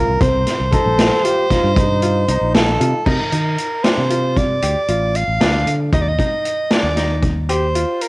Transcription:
0.00 0.11 F4 medium
0.00 0.20 A#4 medium
0.08 0.20 C2 medium
0.21 0.44 C2 medium
0.21 0.52 C4 medium
0.21 2.50 C5 loud
0.21 kick loud
0.21 closed hi-hat medium
0.47 snare soft
0.47 closed hi-hat medium
0.60 0.72 C2 medium
0.72 1.04 D#4 medium
0.72 1.26 A4 medium
0.72 kick medium
0.72 closed hi-hat medium
0.86 1.09 A#1 medium
0.99 snare loud
0.99 closed hi-hat medium
1.25 1.40 F4 medium
1.25 1.53 G4 medium
1.25 closed hi-hat medium
1.51 1.82 D#4 medium
1.51 1.78 F4 medium
1.51 kick medium
1.51 snare soft
1.51 closed hi-hat medium
1.63 2.24 G2 medium
1.76 2.28 D#4 medium
1.76 kick loud
1.76 closed hi-hat medium
2.02 2.18 F4 medium
2.02 closed hi-hat medium
2.28 2.40 C2 medium
2.28 2.59 D#4 medium
2.28 3.02 D#4 medium
2.28 closed hi-hat medium
2.41 2.76 A#1 medium
2.55 3.07 A4 medium
2.55 snare loud
2.55 closed hi-hat medium
2.80 2.92 C3 loud
2.80 2.96 F4 medium
2.80 closed hi-hat medium
3.06 3.18 C3 medium
3.06 3.22 D#4 medium
3.06 3.85 A#4 medium
3.06 kick loud
3.06 crash medium
3.32 3.56 D#3 medium
3.32 3.63 D#4 medium
3.32 closed hi-hat medium
3.58 closed hi-hat medium
3.83 4.00 D4 medium
3.83 4.39 C5 medium
3.83 snare loud
3.83 closed hi-hat medium
3.97 4.58 C3 medium
4.10 4.41 F4 medium
4.10 closed hi-hat medium
4.36 5.17 D5 medium
4.36 kick medium
4.36 closed hi-hat soft
4.62 4.74 D2 medium
4.62 4.78 G4 medium
4.62 closed hi-hat medium
4.88 5.24 A1 medium
4.88 5.20 F4 medium
4.88 closed hi-hat medium
5.15 5.76 F5 medium
5.15 closed hi-hat medium
5.28 5.39 A1 medium
5.40 5.64 D2 medium
5.40 5.72 D4 medium
5.40 snare loud
5.40 closed hi-hat medium
5.66 5.90 D3 medium
5.66 closed hi-hat medium
5.92 6.16 D#2 medium
5.92 6.08 D#4 medium
5.92 6.03 D#5 medium
5.92 kick medium
5.92 closed hi-hat medium
6.01 6.09 D5 medium
6.08 6.73 D#5 medium
6.19 6.50 D#4 medium
6.19 kick medium
6.19 closed hi-hat soft
6.45 closed hi-hat medium
6.71 6.86 D4 medium
6.71 7.22 D5 medium
6.71 snare medium
6.71 closed hi-hat medium
6.83 7.83 D#2 medium
6.97 7.28 D#4 medium
6.97 snare soft
6.97 closed hi-hat medium
7.22 kick medium
7.22 closed hi-hat soft
7.49 7.64 G4 medium
7.49 8.03 C5 medium
7.49 closed hi-hat medium
7.75 8.06 F4 medium
7.75 closed hi-hat medium
8.01 8.08 A#4 medium
8.01 closed hi-hat medium

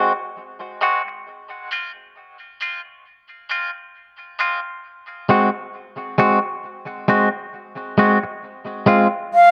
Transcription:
0.00 0.11 G#3 medium
0.00 0.12 C4 medium
0.00 0.12 F#4 medium
0.81 1.01 G#3 medium
0.81 1.01 C4 medium
0.81 1.02 F#4 medium
1.08 muted clean electric guitar stroke soft
1.71 1.90 G#3 medium
1.71 1.91 C4 medium
1.71 1.91 F4 medium
2.61 2.80 G#3 medium
2.61 2.80 C4 medium
2.61 2.81 F4 medium
3.50 3.69 G#3 medium
3.50 3.70 C4 medium
3.50 3.70 F4 medium
4.39 4.59 G#3 medium
4.39 4.59 C4 medium
4.39 4.60 F4 loud
5.29 5.49 G#3 medium
5.29 5.49 C4 medium
5.29 5.49 F#4 medium
6.18 6.38 G#3 medium
6.18 6.38 C4 medium
6.18 6.39 F#4 medium
7.08 7.28 G#3 medium
7.08 7.28 C4 medium
7.08 7.28 F#4 medium
7.98 8.17 G#3 medium
7.98 8.18 C4 medium
7.98 8.18 F#4 medium
8.24 muted clean electric guitar stroke soft
8.86 9.06 G#3 medium
8.86 9.07 C4 medium
8.86 9.07 F4 medium
9.34 9.51 F5 loud

